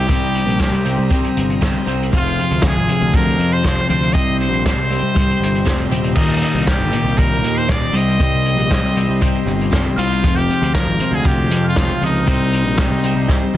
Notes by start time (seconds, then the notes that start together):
Already playing: G4 C5 A#5 D#6 G6
0.08 C2 C3 G3 C4, kick, closed hi-hat
0.35 closed hi-hat
0.47 A#1, closed hi-hat
0.59 C3 G3 C4, kick, snare, closed hi-hat
0.73 C2, closed hi-hat
0.85 C3 G3 C4, closed hi-hat
0.98 C2
1.11 C3 G3 C4, kick, closed hi-hat
1.24 closed hi-hat
1.37 G1, closed hi-hat
1.50 closed hi-hat
1.62 G1 C3 G3 C4, kick, snare, closed hi-hat
1.77 closed hi-hat
1.87 C2 C3 G3 C4, closed hi-hat
2.03 closed hi-hat
2.11 F1 F2 C3 F3 G#4 F5 C6, kick, closed hi-hat
2.16 F4 F6
2.26 closed hi-hat
2.39 closed hi-hat
2.50 D2, closed hi-hat
2.62 F2 C3 F3, kick, snare, closed hi-hat
2.67 G#4 G#6
2.75 G#1, closed hi-hat
2.88 F2 C3 F3, closed hi-hat
3.01 D2
3.13 F2 C3 F3 A#4 A#6, kick, closed hi-hat
3.39 F2, closed hi-hat
3.52 C5 C7
3.64 F1 F2 C3 F3, kick, snare, closed hi-hat
3.78 closed hi-hat
3.89 D2 F2 C3 F3 C5 C7, closed hi-hat
4.03 closed hi-hat
4.13 C2 C3 G3 C4 G4 D#5 D#7, kick, closed hi-hat
4.40 C5 C7, closed hi-hat
4.51 A#1, closed hi-hat
4.65 C3 G3 C4 C5, kick, snare, closed hi-hat
4.76 C2, closed hi-hat
4.90 C3 G3 C4, closed hi-hat
5.03 C2
5.15 C3 G3 C4, kick, closed hi-hat
5.30 closed hi-hat
5.40 G1, closed hi-hat
5.54 closed hi-hat
5.65 F1 C3 G3 C4, kick, snare, closed hi-hat
5.80 closed hi-hat
5.90 D#1 C3 G3 C4, closed hi-hat
6.04 closed hi-hat
6.15 D#1 D#2 A#2 D#3 D#4 A#5 D#6, kick, crash
6.29 closed hi-hat
6.42 closed hi-hat
6.54 C2, closed hi-hat
6.67 D#2 A#2 D#3 G4 G6, kick, snare, closed hi-hat
6.79 G1, closed hi-hat
6.93 D#2 A#2 D#3, closed hi-hat
7.04 C2
7.17 D#2 A#2 D#3 A#4 A#6, kick, closed hi-hat
7.42 D#2, closed hi-hat
7.55 C5 C7
7.68 D#1 D#2 A#2 D#3 D5 D7, kick, snare, closed hi-hat
7.83 closed hi-hat
7.92 C2 C3 G3 C4 G4 D#5 C6 D#7, closed hi-hat
7.97 D#5
8.09 closed hi-hat
8.19 C2 C3 G3 C4, kick, closed hi-hat
8.46 closed hi-hat
8.56 A#1, closed hi-hat
8.70 C3 G3 C4, kick, snare, closed hi-hat
8.83 C2, closed hi-hat
8.96 C3 G3 C4, closed hi-hat
9.09 C2
9.21 C3 G3 C4, kick, closed hi-hat
9.35 closed hi-hat
9.46 G1, closed hi-hat
9.61 closed hi-hat
9.72 G1 C3 G3 C4, kick, snare, closed hi-hat
9.86 closed hi-hat
9.96 C2 C3 G3 C4 F4 F6, closed hi-hat
10.12 closed hi-hat
10.23 F1 F2 C3 F3 G#3 F5, kick, closed hi-hat
10.35 G4 G6, closed hi-hat
10.50 closed hi-hat
10.62 D2, closed hi-hat
10.74 F2 C3 F3 A#4 A#6, kick, snare, closed hi-hat
10.86 G#1, closed hi-hat
10.99 F2 C3 F3, closed hi-hat
11.11 D2 G#4 G#6
11.25 F2 C3 F3 G4 G6, kick, closed hi-hat
11.50 F2, closed hi-hat
11.64 F6
11.69 F4
11.76 F1 F2 C3 F3, kick, snare, closed hi-hat
11.91 closed hi-hat
12.01 C#2 F2 C3 F3 D#4 D#6, closed hi-hat
12.16 closed hi-hat
12.26 C2 C3 G3 C4 G4 D#5, kick, closed hi-hat
12.53 closed hi-hat
12.64 A#1, closed hi-hat
12.78 C3 G3 C4, kick, snare, closed hi-hat
12.90 C2, closed hi-hat
13.03 C3 G3 C4, closed hi-hat
13.16 C2
13.28 C3 G3 C4, kick, snare
13.54 G1